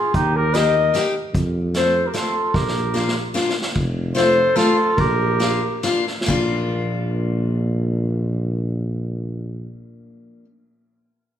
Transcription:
Already playing: F4 G#4
0.14 D#2 D#4 G4, kick, closed hi-hat
0.35 G4 A#4
0.54 A#3 D#4 G4 A#4 D#5, snare, closed hi-hat
0.94 A#3 D#4 G4, snare, closed hi-hat
1.34 F2, kick, closed hi-hat
1.74 A3 C4 F4 A4 C5, snare, closed hi-hat
2.07 G4 A#4
2.14 A3 C4 F4 A4, snare, closed hi-hat
2.54 A#1 G4 A#4, kick, snare
2.68 snare
2.94 A#3 D4 F4, snare
3.08 snare
3.34 A#3 D4 F4, snare
3.49 snare
3.62 snare
3.75 F1, kick, ride
4.15 A3 C4 F4 A4 C5, snare, ride
4.56 A3 C4 F4 A4, snare, ride
4.97 A#1 G4 A#4, kick, ride
5.40 A#3 D4 F4, snare, ride
5.83 A#3 D4 F4, snare, ride
6.07 snare
6.21 snare
6.26 A#1 A#3 D4 F4, kick, floor tom, crash

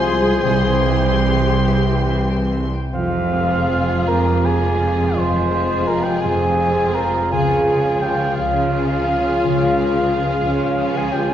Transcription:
Already playing: C2 C3 F3 G#3 C4 F4 G#4 C5 G#5 C6
0.02 F5
0.22 G#5
0.42 C2 C3 E3 G3 E4 G4 G5 C6
0.64 G3
0.84 C4
1.05 E4
1.25 G4
1.46 C5
1.67 E3 E5
1.89 G5
2.09 E5
2.30 G5
2.52 E5
2.73 G5
2.93 F1 F2 F3 G#3 C4 F4 F5
3.31 F3 G#3 F4 G#4
3.69 F4
4.07 F1 F2 A#3 A#4 C5
4.45 F3 F4 G#4 F5 G#5
4.81 C5
5.17 F1 F2 F3 G#3 C5
5.52 F3 G#3 F4 G#4
5.87 F4 A#4
6.04 G4 G5
6.20 F1 F2 C4 G#4 C5 G#5
6.59 F3 F4 G#4 F5
6.94 A#4 C5
7.31 C#2 C#3 F3 G#3 F4 G#4 G#5
7.66 F3 G#3 F4 G#4
8.01 F4 G4 G5
8.36 C#2 C#3 F4 C#5 F5
8.71 F3 F4 G#4 F5
9.08 C#5
9.44 C#2 C#3
9.78 F3 G#3 F4 G#4
10.13 F4
10.45 C#2 C#3 C#5
10.77 F3 F4 G#4 F5
10.96 G#4 G#5
11.12 G4 C#5 G5
11.27 G#4 G#5

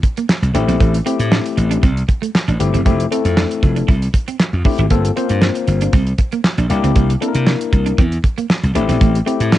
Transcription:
0.03 muted clean electric guitar stroke, kick, closed hi-hat
0.17 A#3, closed hi-hat
0.29 muted clean electric guitar stroke, snare, clap
0.42 C2, closed hi-hat
0.54 A1 A3 C4 D4 E4 G4, closed hi-hat
0.68 A#1 C4, closed hi-hat
0.81 A1 A3, kick, closed hi-hat
0.94 closed hi-hat
1.06 A3 C4 E4 G4, closed hi-hat
1.19 A2, muted clean electric guitar stroke, closed hi-hat
1.32 D4, snare, clap
1.46 closed hi-hat
1.57 A1, muted clean electric guitar stroke, closed hi-hat
1.71 D4, closed hi-hat
1.83 C2 C4, kick, closed hi-hat
1.97 closed hi-hat
2.08 muted clean electric guitar stroke, kick, closed hi-hat
2.22 A3, closed hi-hat
2.35 snare, clap
2.48 A1 D4, closed hi-hat
2.60 G1 A3 C4 E4 G4, muted clean electric guitar stroke, closed hi-hat
2.74 F#1 C4, closed hi-hat
2.85 F1 A3 C4 E4 G4, kick, closed hi-hat
3.00 closed hi-hat
3.11 A3 C4 E4 A4, closed hi-hat
3.25 F2, muted clean electric guitar stroke, closed hi-hat
3.37 D4, snare, clap
3.51 closed hi-hat
3.63 F1, muted clean electric guitar stroke, kick, closed hi-hat
3.76 D4, closed hi-hat
3.88 C2 E4, kick, closed hi-hat
4.02 closed hi-hat
4.14 muted clean electric guitar stroke, kick, closed hi-hat
4.28 C4, closed hi-hat
4.40 muted clean electric guitar stroke, snare, clap
4.53 F2, closed hi-hat
4.65 A3 C4 D4 E4 G4, kick, open hi-hat
4.78 G#1 E4, closed hi-hat
4.90 G1 A#3 C4 F4 A4, kick, closed hi-hat
5.05 closed hi-hat
5.16 A#3 C4 F4 C5, closed hi-hat
5.29 G2, muted clean electric guitar stroke, closed hi-hat
5.42 D4, snare, clap
5.55 closed hi-hat
5.67 G1, muted clean electric guitar stroke, closed hi-hat
5.81 D4, closed hi-hat
5.93 C2 C4, kick, closed hi-hat
6.07 closed hi-hat
6.18 muted clean electric guitar stroke, kick, closed hi-hat
6.32 A#3, closed hi-hat
6.44 snare, clap
6.58 A#1 D4, closed hi-hat
6.70 C2 A#3 D4 E4 G4, muted clean electric guitar stroke, closed hi-hat
6.84 C#2 C4, closed hi-hat
6.96 C2 A#3, kick, closed hi-hat
7.10 closed hi-hat
7.21 A#3 C4 D4 E4 A4, closed hi-hat
7.28 A#4
7.35 C3, muted clean electric guitar stroke, closed hi-hat
7.47 D4, snare, clap
7.61 closed hi-hat
7.73 C2, muted clean electric guitar stroke, kick, closed hi-hat
7.86 D4, closed hi-hat
7.98 E2 C4, kick, closed hi-hat
8.12 closed hi-hat
8.24 muted clean electric guitar stroke, kick, closed hi-hat
8.38 A#3, closed hi-hat
8.50 muted clean electric guitar stroke, snare, clap
8.63 C2, closed hi-hat
8.75 A1 A3 C4 D4 E4 G4, closed hi-hat
8.89 A#1 C4, closed hi-hat
9.01 A1 A3, kick, closed hi-hat
9.15 closed hi-hat
9.26 A3 C4 E4 G4, closed hi-hat
9.40 A2, muted clean electric guitar stroke, closed hi-hat
9.52 D4, snare, clap

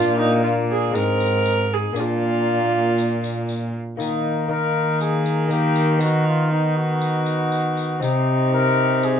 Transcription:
Already playing: A#2 A#3 D4 F4 D5
0.20 D#4
0.44 A#3 F4 D5
0.71 G#4
0.91 G#2 G#3 C4 D#4 D#5
0.95 G#2 C4 A#4, tambourine
1.20 tambourine
1.46 tambourine
1.74 G#4
1.93 A#2 A#3 D4 D5, tambourine
1.99 F4
2.98 tambourine
3.24 tambourine
3.49 tambourine
3.97 D#3 A#3 D#4, tambourine
4.48 A#3 D#4 A#4
5.01 G#4, tambourine
5.26 tambourine
5.48 A#3 D#4, tambourine
5.52 G4
5.76 tambourine
5.98 B3 D#4 F#4, tambourine
6.27 F4
6.51 B3 D#4
6.77 F#4
7.01 tambourine
7.26 tambourine
7.52 tambourine
7.77 tambourine
8.00 C3 C4 D#4, tambourine
8.54 A#4
9.03 G#4, tambourine

